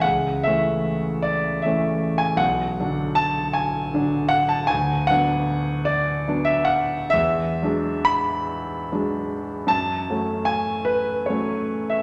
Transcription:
0.01 0.45 C#2 medium
0.01 0.45 F#5 loud
0.43 1.61 E3 soft
0.43 1.61 A3 soft
0.43 1.61 C#4 medium
0.43 1.25 E5 loud
1.22 1.63 D5 medium
1.62 2.37 E3 soft
1.62 2.37 A3 soft
1.62 2.37 C#4 medium
1.62 2.20 E5 medium
2.18 2.39 G#5 medium
2.36 2.77 B1 medium
2.36 3.18 F#5 loud
2.80 3.91 D3 medium
2.80 3.91 F#3 soft
2.80 3.91 D4 medium
3.15 3.56 A5 loud
3.53 4.31 G#5 medium
3.94 4.67 D3 soft
3.94 4.67 F#3 medium
3.94 4.67 D4 medium
4.29 4.50 F#5 loud
4.49 4.70 A5 loud
4.67 5.09 D2 medium
4.67 5.08 G#5 loud
5.07 6.23 F#3 medium
5.07 6.23 B3 soft
5.07 5.86 F#5 loud
5.11 6.24 D4 medium
5.85 6.46 D5 medium
6.28 7.10 F#3 soft
6.28 7.10 B3 soft
6.28 7.10 D4 medium
6.45 6.67 E5 loud
6.65 7.12 F#5 loud
7.10 7.61 E2 medium
7.10 8.07 E5 loud
7.63 8.89 F#3 medium
7.63 8.89 G#3 soft
7.63 8.89 D4 medium
8.05 9.70 B5 loud
8.92 9.67 F#3 soft
8.92 9.67 G#3 soft
8.92 9.68 D4 medium
9.67 10.06 F#2 medium
9.67 10.47 A5 loud
10.10 11.25 F#3 soft
10.10 11.26 A3 soft
10.10 11.26 C#4 soft
10.45 10.87 G#5 loud
10.85 11.27 B4 medium
11.26 12.03 F#3 soft
11.26 12.03 A3 soft
11.26 11.91 C#5 medium
11.30 12.03 C#4 soft
11.90 12.03 E5 medium

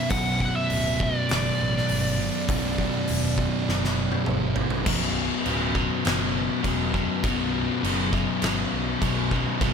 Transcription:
0.00 0.11 B2 loud
0.00 0.12 B2 medium
0.00 0.10 E5 medium
0.09 0.49 B0 loud
0.09 2.48 B1 loud
0.09 2.21 B1 medium
0.09 2.47 F#2 medium
0.09 2.17 F#2 loud
0.09 2.50 B2 loud
0.09 2.19 B2 loud
0.09 0.38 F#5 loud
0.09 kick loud
0.09 open hi-hat medium
0.40 0.55 F#5 medium
0.40 kick medium
0.56 1.02 E5 medium
0.70 1.09 D1 loud
0.70 open hi-hat medium
1.00 4.24 D5 medium
1.00 kick medium
1.29 1.49 F#1 medium
1.29 snare loud
1.29 open hi-hat medium
1.60 1.79 A1 medium
1.77 snare soft
1.89 2.28 G1 medium
1.89 open hi-hat medium
2.19 2.48 B1 medium
2.19 2.47 F#2 medium
2.19 2.51 B2 medium
2.48 2.87 B0 medium
2.48 4.84 B1 medium
2.48 4.55 B1 medium
2.48 4.85 F#2 loud
2.48 4.56 F#2 loud
2.48 4.86 B2 medium
2.48 4.54 B2 loud
2.48 kick loud
2.48 open hi-hat medium
2.78 kick medium
3.08 3.47 E1 loud
3.08 open hi-hat medium
3.38 kick medium
3.68 4.06 F#1 medium
3.68 snare medium
3.84 snare medium
4.12 high tom medium
4.26 4.65 G1 medium
4.26 mid tom medium
4.55 4.86 B1 medium
4.55 4.85 F#2 medium
4.55 4.84 B2 medium
4.55 floor tom loud
4.70 floor tom medium
4.86 5.29 B0 loud
4.86 5.46 B1 loud
4.86 5.45 F#2 medium
4.86 5.47 B2 loud
4.86 kick loud
4.86 crash loud
4.86 crash medium
5.46 5.88 D1 loud
5.46 5.74 B1 medium
5.46 5.74 F#2 medium
5.46 5.75 B2 loud
5.46 crash medium
5.75 6.04 B1 medium
5.75 6.04 F#2 medium
5.75 6.05 B2 medium
5.75 kick medium
6.05 6.48 F#1 loud
6.05 6.63 B1 medium
6.05 6.63 F#2 loud
6.05 6.64 B2 loud
6.05 snare loud
6.05 crash medium
6.64 7.07 E1 medium
6.64 6.93 B1 medium
6.64 6.93 F#2 medium
6.64 6.94 B2 medium
6.64 kick medium
6.64 crash medium
6.94 7.23 B1 medium
6.94 7.23 F#2 medium
6.94 7.24 B2 medium
6.94 kick medium
7.24 7.67 B0 loud
7.24 7.83 B1 loud
7.24 7.83 F#2 loud
7.24 7.84 B2 loud
7.24 kick loud
7.24 crash medium
7.83 8.25 F#1 loud
7.83 8.12 B1 medium
7.83 8.12 F#2 medium
7.83 8.13 B2 loud
7.83 crash medium
8.13 8.42 B1 medium
8.13 8.41 F#2 medium
8.13 8.43 B2 medium
8.13 kick medium
8.42 8.63 G1 loud
8.42 9.02 B1 loud
8.42 9.01 F#2 loud
8.42 9.03 B2 loud
8.42 snare loud
8.42 crash medium
8.72 8.93 B1 medium
9.02 9.44 B1 medium
9.02 9.31 B1 medium
9.02 9.31 F#2 medium
9.02 9.32 B2 loud
9.02 kick medium
9.02 crash medium
9.31 9.61 B1 medium
9.31 9.60 F#2 medium
9.31 9.61 B2 medium
9.31 kick medium
9.60 9.73 B0 loud
9.60 9.73 B1 medium
9.60 9.73 F#2 loud
9.60 9.73 B2 loud
9.60 kick loud
9.60 crash medium

